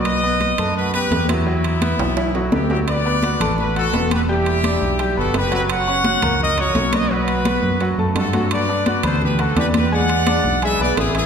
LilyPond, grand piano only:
\new Staff \with { instrumentName = "Grand piano" } { \time 4/4 \key e \minor \tempo 4 = 170 <fis fis'>8 <b b'>4 <a a'>4 <b b'>4 <fis fis'>8 | <fis fis'>4 <b b'>4 <e' e''>8 <fis fis'>8 <b b'>8 <fis fis'>8 | r8 <b b' b''>8 <fis' fis'' fis'''>8 <a a' a''>4 <fis' fis'' fis'''>8 <b b' b''>4 | <g g' g''>4 <d' d'' d'''>4 <g g' g''>8 <b b' b''>4 <fis fis' fis''>8~ |
<fis fis' fis''>8 <cis' cis'' cis'''>8 <fis' fis'' fis'''>8 <ais ais' ais''>4 <fis' fis'' fis'''>8 <cis' cis'' cis'''>4 | <fis fis' fis''>4 <b b' b''>4 <fis fis' fis''>8 <a a' a''>4 <fis fis' fis''>8~ | <fis fis' fis''>8 <d' d'' d'''>8 <fis' fis'' fis'''>8 <b b' b''>4 <fis' fis'' fis'''>8 <d' d'' d'''>4 | <gis gis' gis''>4 <d' d'' d'''>4 <gis gis' gis''>8 <b b' b''>4 <e e' e''>8 | }